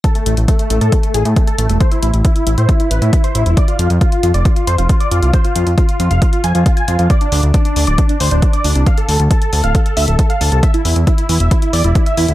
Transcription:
<<
  \new Staff \with { instrumentName = "Supersaw synth" } { \time 4/4 \key a \minor \tempo 4 = 136 a'16 a16 a16 r16 a16 a16 a16 a'16 a16 a16 gis'16 a16 a16 a'16 a16 a16 | c''16 e'16 e'16 r16 e'16 e'16 e'16 c''16 e'16 e'16 b'16 e'16 e'16 c''16 e'16 e'16 | d''16 f'16 f'16 r16 f'16 f'16 f'16 d''16 f'16 f'16 c''16 f'16 f'16 d''16 f'16 f'16 | c''16 f'16 f'16 r16 f'16 f'16 f'16 f''16 f'16 f'16 gis''16 f'16 f'16 gis''16 f'16 f'16 |
d''16 d'16 d'16 r16 d'16 d'16 d'16 d''16 d'16 d'16 c''16 d'16 d'16 d''16 d'16 d'16 | f''16 a'16 a'16 r16 a'16 a'16 a'16 f''16 a'16 a'16 e''16 a'16 a'16 f''16 a'16 a'16 | e''16 e'16 e'16 r16 e'16 e'16 e'16 e''16 e'16 e'16 d''16 e'16 e'16 e''16 e'16 e'16 | }
  \new Staff \with { instrumentName = "Analog synth bass" } { \clef bass \time 4/4 \key a \minor r8 a,,16 a,,16 r8 a,,16 a,16 r8 a,,16 a,16 r8 a,,16 e,,16 | r8 a,,16 a,,16 r8 a,,16 a,16 r8 a,,16 a,16 r8 a,,16 e,,16 | r8 f,16 f,16 r8 f,16 f,,16 r8 f,16 f,,16 r8 f,16 c,16 | r8 f,16 f,16 r8 f,16 f,,16 r8 f,16 f,16 r8 f,16 f,16 |
r8 d,16 d,16 r8 d,16 d,,16 r8 d,16 d,,16 r8 d,16 c,16 | r8 d,16 d,16 r8 d,16 d,,16 r8 d,16 d,,16 r8 d,16 c,16 | r8 e,16 e,16 r8 e,16 e,,16 r8 e,16 e,,16 r8 e,16 d,16 | }
  \new DrumStaff \with { instrumentName = "Drums" } \drummode { \time 4/4 <hh bd>16 hh16 hh16 hh16 <hh bd>16 hh16 hh16 hh16 <hh bd>16 hh16 hh16 hh16 <hh bd>16 hh16 hh16 hh16 | <hh bd>16 hh16 hh16 hh16 <hh bd>16 hh16 hh16 hh16 <hh bd>16 hh16 hh16 hh16 <hh bd>16 hh16 hh16 hh16 | <hh bd>16 hh16 hh16 hh16 <hh bd>16 hh16 hh16 hh16 <hh bd>16 hh16 hh16 hh16 <hh bd>16 hh16 hh16 hh16 | <hh bd>16 hh16 hh16 hh16 <hh bd>16 hh16 hh16 hh16 <hh bd>16 hh16 hh16 hh16 <hh bd>16 hh16 hh16 hh16 |
<hh bd>16 hh16 hho16 hh16 <hh bd>16 hh16 hho16 hh16 <hh bd>16 hh16 hho16 hh16 <hh bd>16 hh16 hho16 hh16 | <hh bd>16 hh16 hho16 hh16 <hh bd>16 hh16 hho16 hh16 <hh bd>16 hh16 hho16 hh16 <hh bd>16 hh16 hho16 hh16 | <hh bd>16 hh16 hho16 hh16 <hh bd>16 hh16 hho16 hh16 <hh bd>16 hh16 hho16 hh16 <hh bd>16 hh16 hho16 hh16 | }
>>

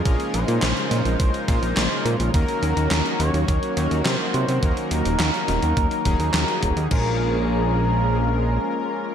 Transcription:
<<
  \new Staff \with { instrumentName = "Analog synth lead" } { \time 4/4 \key bes \minor \tempo 4 = 105 aes'8 c''2.~ c''8 | bes'4. des''4. c''4~ | c''8 bes'2.~ bes'8 | bes'1 | }
  \new Staff \with { instrumentName = "Analog polysynth" } { \time 4/4 \key bes \minor <aes bes des' f' bes'>2~ <aes bes des' f' bes'>8 <aes bes des' f' bes'>4. | <ges bes des' ees' bes'>2~ <ges bes des' ees' bes'>8 <ges bes des' ees' bes'>4. | <ges bes des' ees' bes'>2~ <ges bes des' ees' bes'>8 <ges bes des' ees' aes'>4. | <aes bes des' f' bes'>1 | }
  \new Staff \with { instrumentName = "Analog synth pad" } { \time 4/4 \key bes \minor << { <des f aes ees'>1 | <ees ges bes ges'>1~ | <ees ges bes ges'>1 | <f aes bes des' aes'>1 | } \\ { bes1 | des'1 | ees'1 | r1 | } >> }
  \new Staff \with { instrumentName = "Analog synth bass" } { \clef bass \time 4/4 \key bes \minor bes,,16 r16 bes,,16 bes,16 bes,,16 r16 bes,16 bes,,16 bes,,16 r16 bes,16 bes,,16 bes,,16 r16 bes,16 bes,,16 | ees,16 r16 ees,16 ees,16 ees,16 r16 ees,16 ees,16 ees,16 r16 ees,16 ees,16 c16 r16 c16 c16 | ees,16 r16 ees,16 ees,,16 ees,16 r16 ees,,16 ees,16 ees,16 r16 ees,,16 ees,16 ees,16 r16 ees,,16 ees,16 | bes,,2. r4 | }
  \new DrumStaff \with { instrumentName = "Drums" } \drummode { \time 4/4 <hh bd>16 hh16 hh16 hh16 <hc hh sn>16 hh16 <hh sn>16 hh16 <hh bd>16 hh16 <hh bd>16 hh16 <hc hh sn>8 hh16 hh16 | <hh bd>16 hh16 hh16 hh16 <hc hh sn>16 hh16 hh16 hh16 <hh bd>16 hh16 hh16 hh16 <hc hh sn>8 hh16 hh16 | <hh bd>16 hh16 hh16 hh16 <hc hh sn>16 hh16 <hh sn>16 hh16 <hh bd>16 hh16 <hh bd>16 hh16 <hc hh sn>16 hh16 <hh bd>16 hh16 | <cymc bd>4 r4 r4 r4 | }
>>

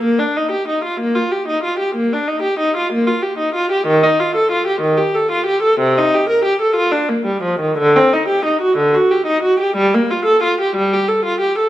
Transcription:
\new Staff \with { instrumentName = "Viola" } { \time 12/8 \key bes \major \tempo 4. = 62 bes16 d'16 ees'16 g'16 ees'16 f'16 bes16 f'16 g'16 ees'16 f'16 g'16 bes16 d'16 ees'16 g'16 ees'16 f'16 bes16 f'16 g'16 ees'16 f'16 g'16 | \key d \phrygian ees16 ees'16 f'16 a'16 f'16 g'16 ees16 g'16 a'16 f'16 g'16 a'16 c16 ees'16 g'16 bes'16 g'16 a'16 f'16 d'16 bes16 g16 f16 ees16 | d16 c'16 ees'16 g'16 ees'16 fis'16 d16 fis'16 g'16 ees'16 fis'16 g'16 g16 bes16 f'16 a'16 f'16 g'16 g16 g'16 a'16 f'16 g'16 a'16 | }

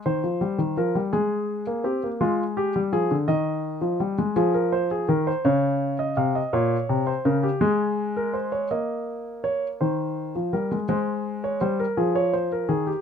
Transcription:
<<
  \new Staff \with { instrumentName = "Grand piano" } { \time 6/8 \key bes \dorian \tempo 4. = 55 c''4 bes'8 aes'4 g'8 | f'8 g'8 aes'8 ees''4. | aes'16 bes'16 c''16 aes'16 bes'16 c''16 des''8. ees''16 f''16 ees''16 | des''8. c''16 bes'16 g'16 aes'8. bes'16 c''16 des''16 |
ees''4 des''8 c''4 bes'8 | c''8. des''16 c''16 bes'16 aes'16 des''16 c''16 bes'16 aes'16 g'16 | }
  \new Staff \with { instrumentName = "Grand piano" } { \clef bass \time 6/8 \key bes \dorian ees16 f16 g16 ees16 f16 g16 aes8. bes16 c'16 bes16 | aes8. g16 f16 d16 ees8. f16 g16 aes16 | f4 ees8 des4 c8 | bes,8 c8 des8 aes4. |
bes4. ees8. f16 g16 aes16 | aes4 g8 f4 ees8 | }
>>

